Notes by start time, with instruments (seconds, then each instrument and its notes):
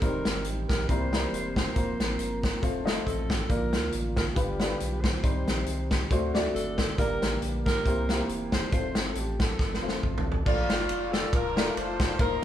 Already playing: tonewheel organ C4
0.00 sub bass D#1, tonewheel organ D#3 G3 G4, upright piano D#3 G3 C4 D#4 C5, alto saxophone A#4, kick, closed hi-hat
0.25 sub bass G1, snare, closed hi-hat
0.44 sub bass A1, closed hi-hat
0.68 sub bass A#1, alto saxophone A#4, kick, snare, closed hi-hat
0.87 sub bass C2, upright piano C3 G3 C4 E4 A#4, tonewheel organ E3 A#3 G4, alto saxophone C5, kick, closed hi-hat
1.12 upright piano G3 C4 E4 A#4, snare, closed hi-hat
1.32 sub bass E1, closed hi-hat
1.56 alto saxophone C5, kick, snare, closed hi-hat
1.74 sub bass F1, tonewheel organ F3 C4 A#4, upright piano A#3 C4 F4 C5, kick, closed hi-hat
2.00 sub bass A1, snare, closed hi-hat
2.19 sub bass G1, closed hi-hat
2.43 kick, snare, closed hi-hat
2.61 sub bass F1, tonewheel organ A3 A4, upright piano A3 C4 F4 C5, kick, closed hi-hat
2.85 upright piano A3 C4 F4 D#5, snare, closed hi-hat
3.05 sub bass A1, alto saxophone A4, kick, closed hi-hat
3.30 kick, snare, closed hi-hat
3.48 sub bass A#1, upright piano A#2 A#3 D4 F4 D5, tonewheel organ D3 A#3 F4, alto saxophone A#4, kick, closed hi-hat
3.73 sub bass D2, snare, closed hi-hat
3.92 sub bass A1, closed hi-hat
4.17 alto saxophone A#4, kick, snare, closed hi-hat
4.34 sub bass G1, upright piano G2 G3 D4 F4 B4, tonewheel organ G3 B3, alto saxophone G4, kick, closed hi-hat
4.60 upright piano G3 D4 F4 A4, snare, closed hi-hat
4.66 upright piano B4
4.80 sub bass B1, closed hi-hat
5.01 alto saxophone C5, kick, snare, closed hi-hat
5.22 sub bass C2, upright piano C3 G3 C4 D#4 C5, tonewheel organ D#3 G3 C4 G4, kick, closed hi-hat
5.47 sub bass A#1, snare, closed hi-hat
5.66 sub bass C2, closed hi-hat
5.91 kick, snare, closed hi-hat
6.11 sub bass D2, tonewheel organ D3 A3 F#4, upright piano D3 A3 D4 F#4 C5, kick, closed hi-hat
6.34 upright piano A3 D4 F#4 D5, snare, closed hi-hat
6.55 sub bass F#1, alto saxophone A4, closed hi-hat
6.78 kick, snare, closed hi-hat
6.97 sub bass G1, upright piano G2 A#3 D4 G4 D5, tonewheel organ D3 G3 A#3 G4, alto saxophone A#4, kick, closed hi-hat
7.21 sub bass A1, snare, closed hi-hat
7.42 sub bass A#1, closed hi-hat
7.66 alto saxophone A#4, kick, snare, closed hi-hat
7.84 sub bass C2, upright piano C3 A#3 E4 G4 C5, tonewheel organ E3 C4 G4, kick, closed hi-hat
8.09 upright piano A#3 E4 G4 C5, snare, closed hi-hat
8.29 sub bass E1, closed hi-hat
8.52 alto saxophone C5, kick, snare, closed hi-hat
8.71 sub bass F1, tonewheel organ F3 A3 A4, upright piano A3 C4 F4 C5, alto saxophone C5, kick, closed hi-hat
8.95 sub bass G1, snare, closed hi-hat
9.08 alto saxophone A4
9.15 sub bass A1, alto saxophone G4, closed hi-hat
9.40 alto saxophone A4, kick, snare, closed hi-hat
9.59 sub bass G1, kick, snare
9.74 snare
9.82 sub bass F1, upright piano A3 C4 F4 C5
9.88 snare
10.03 sub bass A1, kick, mid tom
10.18 floor tom
10.32 floor tom
10.46 sub bass A#1, upright piano A#2 D4 F4 A4 D5, saxophone section A3 D4 F4, tonewheel organ F4 D5 F5, kick, crash
10.70 sub bass G1, snare, ride
10.89 sub bass F1, ride
11.12 saxophone section A4, snare, ride
11.33 sub bass D1, saxophone section D4 F4 A#4, kick, ride
11.56 upright piano A3 D4 F4 A4, snare, ride
11.77 sub bass F1, saxophone section F4 A4 C5, ride
12.00 kick, snare, ride
12.18 sub bass F1, upright piano A#3 D#4 F4 C5, saxophone section D#4 A#4, tonewheel organ A#4 C5 F5 C6, kick, ride